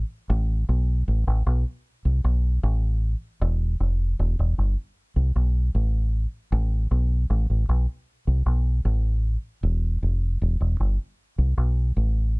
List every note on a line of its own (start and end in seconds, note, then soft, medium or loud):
0.30 0.63 A1 loud
0.69 1.02 B1 medium
1.08 1.25 A1 medium
1.27 1.44 A1 medium
1.47 1.63 B1 loud
2.05 2.22 C2 medium
2.24 2.58 B1 loud
2.63 3.14 A1 loud
3.42 3.75 E1 loud
3.80 4.14 F1 medium
4.19 4.36 E1 medium
4.39 4.55 E1 medium
4.58 4.75 G1 medium
5.16 5.33 C2 medium
5.36 5.69 B1 medium
5.75 6.25 A1 medium
6.52 6.86 A1 loud
6.91 7.25 B1 medium
7.30 7.47 A1 loud
7.50 7.66 A1 medium
7.69 7.85 B1 medium
8.27 8.44 C2 medium
8.46 8.80 B1 medium
8.85 9.36 A1 loud
9.63 9.97 E1 loud
10.03 10.36 F1 medium
10.42 10.58 E1 loud
10.60 10.77 E1 medium
10.80 10.97 G1 medium
11.38 11.55 C2 medium
11.57 11.91 B1 medium
11.97 12.40 A1 medium